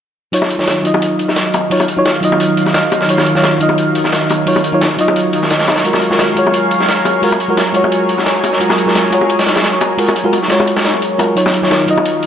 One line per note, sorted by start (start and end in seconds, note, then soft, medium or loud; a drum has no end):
0.32 5.81 D#3 medium
0.32 0.57 F#3 medium
0.32 5.81 F#3 medium
0.32 0.57 D#4 medium
0.32 0.58 F4 medium
0.32 11.32 A#4 medium
0.32 11.33 C#5 medium
0.32 0.58 C#5 medium
0.32 5.81 F5 medium
0.32 closed hi-hat medium
0.42 snare soft
0.42 high bongo medium
0.50 closed hi-hat medium
0.58 0.82 F#3 medium
0.58 0.83 D#4 medium
0.58 0.83 F4 medium
0.58 0.83 C#5 medium
0.58 snare soft
0.67 snare loud
0.67 closed hi-hat medium
0.67 high bongo medium
0.83 1.68 F#3 medium
0.83 1.69 D#4 medium
0.83 1.69 F4 medium
0.83 1.70 D#5 medium
0.83 closed hi-hat medium
0.94 high bongo medium
1.02 closed hi-hat medium
1.19 closed hi-hat medium
1.28 snare soft
1.28 high bongo medium
1.36 snare loud
1.36 closed hi-hat medium
1.54 closed hi-hat medium
1.54 high bongo medium
1.70 1.84 F#3 medium
1.70 1.85 D#4 medium
1.70 1.85 F4 medium
1.70 1.85 C#5 medium
1.70 closed hi-hat medium
1.70 open hi-hat medium
1.80 closed hi-hat soft
1.80 high bongo medium
1.88 closed hi-hat medium
1.97 2.10 F#3 medium
1.97 2.11 D#4 medium
1.97 2.11 F4 medium
1.97 2.11 C#5 loud
2.05 snare loud
2.05 closed hi-hat medium
2.05 high bongo medium
2.21 3.06 F#3 medium
2.21 3.07 D#4 medium
2.21 3.07 F4 medium
2.21 3.08 D#5 loud
2.21 closed hi-hat medium
2.32 high bongo medium
2.40 closed hi-hat medium
2.57 closed hi-hat medium
2.66 snare soft
2.66 high bongo medium
2.74 snare loud
2.74 closed hi-hat medium
2.92 closed hi-hat medium
2.92 high bongo medium
3.01 snare medium
3.08 3.33 F#3 medium
3.08 3.33 D#4 medium
3.08 3.33 F4 medium
3.08 3.34 C#5 medium
3.08 closed hi-hat medium
3.18 snare soft
3.18 high bongo medium
3.26 closed hi-hat medium
3.35 3.58 F#3 medium
3.35 3.59 D#4 medium
3.35 3.59 F4 medium
3.35 3.59 C#5 medium
3.35 snare medium
3.43 snare loud
3.43 closed hi-hat medium
3.43 high bongo medium
3.59 4.44 F#3 medium
3.59 4.45 D#4 medium
3.59 4.45 F4 medium
3.59 4.46 D#5 medium
3.59 closed hi-hat medium
3.69 high bongo medium
3.78 closed hi-hat medium
3.95 closed hi-hat medium
4.04 snare soft
4.04 high bongo medium
4.12 snare loud
4.12 closed hi-hat medium
4.30 closed hi-hat medium
4.30 high bongo medium
4.46 4.60 F#3 medium
4.46 4.61 D#4 medium
4.46 4.61 F4 medium
4.46 4.61 C#5 medium
4.46 closed hi-hat medium
4.46 open hi-hat medium
4.56 closed hi-hat soft
4.56 high bongo medium
4.64 closed hi-hat medium
4.72 4.86 F#3 medium
4.72 4.86 D#4 medium
4.72 4.87 F4 medium
4.72 4.87 C#5 loud
4.81 snare loud
4.81 closed hi-hat medium
4.81 high bongo medium
4.97 5.82 F#3 medium
4.97 5.83 D#4 medium
4.97 5.83 F4 medium
4.97 5.84 D#5 medium
4.97 closed hi-hat medium
5.08 high bongo medium
5.16 closed hi-hat medium
5.33 closed hi-hat medium
5.43 snare soft
5.43 high bongo medium
5.50 snare loud
5.50 closed hi-hat medium
5.59 snare medium
5.59 closed hi-hat medium
5.68 snare medium
5.68 closed hi-hat medium
5.68 high bongo medium
5.76 snare loud
5.76 closed hi-hat medium
5.84 11.33 F#3 medium
5.84 6.09 G#3 medium
5.84 6.09 F4 medium
5.84 6.09 F#4 medium
5.84 11.33 G#4 medium
5.84 6.10 A#4 medium
5.84 8.58 F5 medium
5.84 closed hi-hat medium
5.93 snare medium
5.93 high bongo medium
6.02 closed hi-hat medium
6.10 6.33 G#3 medium
6.10 6.35 F4 medium
6.10 6.35 F#4 medium
6.10 6.35 A#4 medium
6.10 snare medium
6.19 snare loud
6.19 closed hi-hat medium
6.19 high bongo medium
6.35 7.20 G#3 medium
6.35 7.21 F4 medium
6.35 7.21 F#4 medium
6.35 closed hi-hat medium
6.39 7.22 C#5 medium
6.47 high bongo medium
6.54 closed hi-hat medium
6.71 closed hi-hat medium
6.80 snare soft
6.80 high bongo medium
6.88 snare loud
6.88 closed hi-hat medium
7.05 closed hi-hat medium
7.05 high bongo medium
7.22 7.36 G#3 medium
7.22 7.36 F4 medium
7.22 7.37 F#4 medium
7.22 7.37 A#4 medium
7.22 closed hi-hat medium
7.22 open hi-hat medium
7.32 closed hi-hat soft
7.32 high bongo medium
7.40 closed hi-hat medium
7.48 7.62 G#3 medium
7.48 7.62 F4 medium
7.48 7.63 F#4 medium
7.48 7.63 A#4 loud
7.57 snare loud
7.57 closed hi-hat medium
7.57 high bongo medium
7.73 8.58 G#3 medium
7.73 8.59 F4 medium
7.73 8.59 F#4 medium
7.73 8.60 C#5 medium
7.73 closed hi-hat medium
7.84 high bongo medium
7.92 closed hi-hat medium
8.09 closed hi-hat medium
8.18 snare soft
8.18 high bongo medium
8.26 snare loud
8.26 closed hi-hat medium
8.44 closed hi-hat medium
8.44 high bongo medium
8.53 snare medium
8.60 8.85 G#3 medium
8.60 8.85 F4 medium
8.60 8.85 F#4 medium
8.60 8.86 A#4 medium
8.60 closed hi-hat medium
8.69 snare medium
8.69 high bongo medium
8.78 closed hi-hat medium
8.86 9.09 G#3 medium
8.86 9.10 F4 medium
8.86 9.11 F#4 medium
8.86 9.11 A#4 medium
8.86 snare soft
8.95 snare loud
8.95 closed hi-hat medium
8.95 high bongo medium
9.11 9.96 G#3 medium
9.11 9.96 F4 medium
9.11 9.97 F#4 medium
9.11 9.98 C#5 medium
9.11 closed hi-hat medium
9.21 high bongo medium
9.29 closed hi-hat medium
9.39 snare medium
9.39 closed hi-hat medium
9.46 snare medium
9.46 closed hi-hat medium
9.55 snare loud
9.55 closed hi-hat medium
9.55 high bongo medium
9.64 snare loud
9.64 closed hi-hat medium
9.81 closed hi-hat medium
9.81 high bongo medium
9.98 10.12 G#3 medium
9.98 10.12 F4 medium
9.98 10.13 F#4 medium
9.98 10.13 A#4 medium
9.98 closed hi-hat medium
9.98 open hi-hat medium
10.08 closed hi-hat soft
10.08 high bongo medium
10.16 closed hi-hat medium
10.24 10.38 G#3 medium
10.24 10.38 F4 medium
10.24 10.38 F#4 medium
10.24 10.39 A#4 loud
10.33 closed hi-hat medium
10.33 high bongo medium
10.43 snare soft
10.48 11.17 G#3 medium
10.48 11.17 F4 medium
10.48 11.18 F#4 medium
10.48 11.19 C#5 medium
10.48 snare loud
10.48 closed hi-hat medium
10.60 high bongo medium
10.67 closed hi-hat medium
10.77 snare loud
10.77 closed hi-hat medium
10.85 snare loud
10.85 closed hi-hat medium
10.94 high bongo medium
11.02 closed hi-hat medium
11.18 11.34 G#3 medium
11.18 11.35 F4 medium
11.18 11.35 F#4 medium
11.18 11.35 A#4 medium
11.18 closed hi-hat medium
11.18 high bongo medium
11.36 12.26 D#3 medium
11.36 11.60 F#3 medium
11.36 12.26 F#3 medium
11.36 11.61 D#4 medium
11.36 11.61 F4 medium
11.36 12.26 A#4 medium
11.36 12.26 C#5 medium
11.36 11.61 C#5 medium
11.36 12.26 F5 medium
11.36 closed hi-hat medium
11.46 snare medium
11.46 high bongo medium
11.54 closed hi-hat medium
11.62 11.85 F#3 medium
11.62 11.86 D#4 medium
11.62 11.87 F4 medium
11.62 11.87 C#5 medium
11.62 snare medium
11.71 snare loud
11.71 closed hi-hat medium
11.71 high bongo medium
11.87 12.26 F#3 medium
11.87 12.26 D#4 medium
11.87 12.26 F4 medium
11.87 12.26 D#5 medium
11.87 closed hi-hat medium
11.98 high bongo medium
12.06 closed hi-hat medium
12.23 closed hi-hat medium